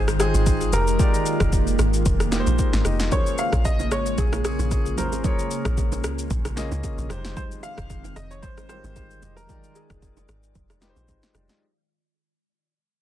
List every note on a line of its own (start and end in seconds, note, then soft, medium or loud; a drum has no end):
0.00 0.33 G#1 loud
0.00 3.08 D#3 medium
0.00 0.19 G#3 loud
0.00 11.57 G#3 medium
0.00 0.19 D#4 medium
0.00 0.20 F4 medium
0.00 11.57 F4 medium
0.00 0.74 G4 medium
0.00 0.21 C5 loud
0.00 0.69 C5 medium
0.08 cross-stick medium
0.08 shaker medium
0.19 0.63 G#3 medium
0.19 0.63 D#4 medium
0.19 0.63 F4 medium
0.19 0.75 G#4 loud
0.19 0.64 C5 medium
0.19 0.64 G5 medium
0.19 cross-stick medium
0.19 shaker loud
0.34 0.71 G#1 medium
0.34 shaker medium
0.46 kick medium
0.46 shaker medium
0.61 shaker soft
0.72 0.98 F1 medium
0.72 0.94 G#3 medium
0.72 3.10 A#3 medium
0.72 0.94 D#4 medium
0.72 0.95 F4 medium
0.72 0.95 G4 medium
0.72 1.49 A#4 loud
0.72 0.95 A#4 medium
0.72 shaker loud
0.87 shaker medium
0.98 1.84 G#3 medium
0.98 1.85 D#4 medium
0.98 1.85 F4 medium
0.98 1.85 G4 medium
0.98 1.86 D5 medium
0.98 kick loud
0.98 shaker medium
1.14 shaker medium
1.26 shaker medium
1.40 1.77 F1 loud
1.40 kick medium
1.40 cross-stick loud
1.40 shaker soft
1.53 kick medium
1.53 shaker medium
1.67 shaker medium
1.79 2.04 G#1 medium
1.79 cross-stick medium
1.79 shaker medium
1.94 shaker medium
2.06 2.45 F1 loud
2.06 kick loud
2.06 shaker medium
2.20 cross-stick medium
2.20 shaker medium
2.31 2.75 G#3 medium
2.31 2.76 D#4 medium
2.31 2.76 F4 medium
2.31 2.76 G4 medium
2.31 2.40 A#4 medium
2.31 snare medium
2.31 shaker loud
2.40 2.80 C5 loud
2.47 2.58 A#1 medium
2.47 shaker medium
2.59 kick medium
2.59 shaker medium
2.73 2.85 G#1 medium
2.73 snare medium
2.73 shaker soft
2.84 3.11 F1 loud
2.84 3.07 G#3 medium
2.84 3.07 D#4 medium
2.84 3.07 F4 medium
2.84 3.07 G4 medium
2.84 3.08 D#5 medium
2.84 cross-stick loud
2.84 shaker loud
3.00 snare medium
3.00 shaker medium
3.11 7.06 C#3 medium
3.11 3.97 A#3 medium
3.11 5.22 A#3 medium
3.11 3.97 C#4 medium
3.11 3.97 F4 medium
3.11 3.98 G#4 medium
3.11 3.98 C5 medium
3.11 3.39 C#5 loud
3.11 kick loud
3.11 low conga medium
3.11 shaker medium
3.26 shaker medium
3.38 3.66 F5 loud
3.38 shaker medium
3.53 3.93 A#1 loud
3.53 kick medium
3.53 cross-stick loud
3.53 shaker soft
3.65 3.92 D#5 loud
3.65 kick medium
3.65 high bongo medium
3.65 shaker medium
3.80 low bongo medium
3.80 shaker medium
3.91 4.17 G#1 loud
3.91 4.19 C#5 medium
3.91 cross-stick loud
3.91 shaker medium
4.06 shaker medium
4.18 4.58 A#1 medium
4.18 4.43 G#4 medium
4.18 kick loud
4.18 low conga medium
4.18 shaker medium
4.33 cross-stick medium
4.33 low bongo medium
4.33 shaker medium
4.43 4.88 A#3 medium
4.43 4.88 C#4 medium
4.43 4.88 F4 medium
4.43 4.99 G#4 loud
4.43 4.89 G#4 medium
4.43 4.89 C#5 medium
4.43 cross-stick medium
4.43 shaker loud
4.59 4.99 A#1 medium
4.59 low bongo medium
4.59 shaker medium
4.71 kick medium
4.71 high bongo medium
4.71 shaker medium
4.86 shaker soft
4.96 5.23 G#1 loud
4.96 5.19 A#3 medium
4.96 5.19 C#4 medium
4.96 5.19 F4 medium
4.96 5.20 G#4 medium
4.96 5.73 A#4 medium
4.96 5.20 C5 medium
4.96 low conga medium
4.96 shaker loud
5.12 high bongo medium
5.12 shaker medium
5.23 6.09 A#3 medium
5.23 6.09 C#4 medium
5.23 7.08 C#4 medium
5.23 6.10 F4 medium
5.23 6.10 G#4 medium
5.23 6.10 C#5 medium
5.23 kick loud
5.23 low conga medium
5.23 shaker medium
5.39 shaker medium
5.51 shaker medium
5.65 6.05 A#1 medium
5.65 kick loud
5.65 cross-stick loud
5.65 shaker medium
5.77 kick medium
5.77 high bongo medium
5.77 shaker medium
5.92 low bongo medium
5.92 shaker medium
6.04 6.29 C#2 loud
6.04 cross-stick loud
6.04 shaker medium
6.19 shaker medium
6.30 6.70 A#1 loud
6.30 kick loud
6.30 low conga medium
6.30 shaker medium
6.45 cross-stick medium
6.45 low bongo medium
6.45 shaker medium
6.56 7.00 A#3 medium
6.56 7.00 C#4 medium
6.56 7.01 F4 medium
6.56 7.01 G#4 medium
6.56 7.01 D#5 loud
6.56 snare medium
6.56 shaker loud
6.72 6.83 C#2 medium
6.72 low bongo medium
6.72 shaker medium
6.84 kick medium
6.84 high bongo medium
6.84 shaker medium
6.98 7.10 A#1 medium
6.98 shaker soft
7.09 7.35 F1 loud
7.09 11.58 D#3 medium
7.09 7.95 G#3 loud
7.09 9.20 C4 medium
7.09 7.95 D#4 medium
7.09 7.96 F4 medium
7.09 7.96 G4 medium
7.09 7.96 C5 loud
7.09 cross-stick loud
7.09 low conga medium
7.09 shaker loud
7.25 snare medium
7.25 high bongo medium
7.25 shaker medium
7.37 7.43 C5 loud
7.37 kick loud
7.37 low conga medium
7.37 shaker medium
7.52 shaker medium
7.63 8.18 F5 loud
7.63 shaker medium
7.78 8.15 F1 loud
7.78 kick medium
7.78 cross-stick loud
7.78 shaker medium
7.90 kick medium
7.90 high bongo medium
7.90 shaker medium
8.04 low bongo medium
8.04 shaker medium
8.16 8.45 F1 loud
8.16 8.31 D#5 loud
8.16 cross-stick medium
8.16 shaker medium
8.31 8.43 C#5 medium
8.31 shaker medium
8.42 8.82 G#1 loud
8.42 8.67 C5 loud
8.42 kick loud
8.42 low conga medium
8.42 shaker medium
8.58 cross-stick medium
8.58 low bongo medium
8.58 shaker medium
8.68 8.76 G3 medium
8.68 9.13 D#4 medium
8.68 9.13 F4 medium
8.68 9.13 G4 medium
8.68 9.14 A#4 medium
8.68 9.33 C5 loud
8.68 cross-stick medium
8.68 shaker loud
8.75 9.16 G#3 medium
8.84 9.21 G#1 medium
8.84 low bongo medium
8.84 shaker medium
8.96 kick medium
8.96 high bongo medium
8.96 shaker medium
9.11 shaker soft
9.21 9.48 F1 loud
9.21 9.44 G#3 medium
9.21 9.44 D#4 medium
9.21 9.44 F4 medium
9.21 9.45 G4 medium
9.21 11.59 D5 medium
9.21 9.45 D#5 medium
9.21 low conga medium
9.21 shaker loud
9.36 9.76 A#4 loud
9.36 high bongo medium
9.36 shaker medium
9.48 10.34 G#3 medium
9.48 10.34 D#4 medium
9.48 10.35 F4 medium
9.48 10.35 D5 medium
9.48 10.35 G5 medium
9.48 kick loud
9.48 low conga medium
9.48 shaker medium
9.64 shaker medium
9.75 10.51 G#4 medium
9.75 shaker medium
9.90 10.27 F1 loud
9.90 kick loud
9.90 cross-stick loud
9.90 shaker medium
10.02 kick medium
10.02 high bongo medium
10.02 shaker medium
10.17 low bongo medium
10.17 shaker medium
10.29 10.54 G#1 loud
10.29 cross-stick loud
10.29 low bongo medium
10.29 shaker medium
10.43 shaker medium
10.55 10.95 F1 loud
10.55 kick loud
10.55 low conga medium
10.55 shaker medium
10.70 cross-stick medium
10.70 low bongo medium
10.70 shaker medium
10.81 11.25 G#3 medium
10.81 11.25 D#4 medium
10.81 11.25 F4 medium
10.81 11.26 G4 medium
10.81 10.89 B4 medium
10.81 snare medium
10.81 shaker loud
10.89 11.29 C5 loud
10.96 11.08 A#1 medium
10.96 low bongo medium
10.96 shaker medium
11.08 11.22 G#1 loud
11.08 kick medium
11.08 high bongo medium
11.08 shaker medium
11.23 snare medium
11.23 shaker soft
11.34 11.49 F1 loud
11.34 11.56 G#3 medium
11.34 11.56 D#4 medium
11.34 11.57 F4 medium
11.34 11.57 G4 medium
11.34 11.57 D5 medium
11.34 cross-stick loud
11.34 low conga medium
11.34 shaker loud
11.49 snare medium
11.49 high bongo medium
11.49 shaker soft